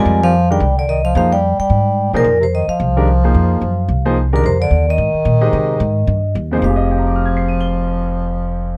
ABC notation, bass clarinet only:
X:1
M:4/4
L:1/8
Q:"Swing" 1/4=219
K:Fdor
V:1 name="Bass clarinet" clef=bass
A, F,2 G,2 D, E, F, | F, G,2 G,4 B,,- | B,, C, E, F,4- F,- | F,6 z B,, |
C, D,2 E,4- E,- | E,6 z2 | F,8- | F,8 |]